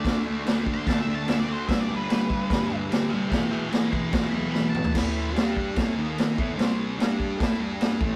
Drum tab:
CC |x---x---x---x---|x---x---x---x---|x---x---x-------|x---x---x---x---|
SD |o---o---o---o---|o---o---o---o---|o---o---o---o---|o---o---o---o---|
T2 |----------------|----------------|--------------o-|----------------|
FT |----------------|----------------|---------------o|----------------|
BD |o-----o-o-------|o-----o-o-------|o-----o-o-------|o-----o-o-----o-|

CC |x---x---x---x---|
SD |o---o---o---o---|
T2 |----------------|
FT |----------------|
BD |------o-o-----o-|